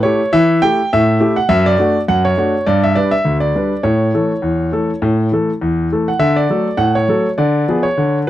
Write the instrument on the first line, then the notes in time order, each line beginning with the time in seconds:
grand piano
0.03 A3 E4 G4 C#5
0.33 E3 E5
0.62 A3 E4 G4 G5
0.93 A2 E5
1.20 A3 E4 G4
1.36 F#5
1.49 F#2 E5
1.66 D5
1.79 A3 D4 F#4
2.08 F#2 F#5
2.25 C#5
2.37 A3 D4 F#4
2.66 G2 D5
2.84 E5
2.95 G3 D4 B4 D5
3.11 E5
3.25 D2
3.40 D5
3.55 G3 D4 B4
3.83 A2 C#5
4.14 E3 A3 A4
4.42 E2
4.72 E3 A3 A4
5.02 A2
5.32 E3 A3 A4
5.61 E2
5.92 E3 A3 A4
6.08 F#5
6.19 D3 E5
6.36 D5
6.50 F#3 A3 A4
6.77 A2 F#5
6.95 C#5
7.08 F#3 A3 A4
7.38 D3 D5
7.69 F3 B3 G#4
7.83 C#5
7.97 D3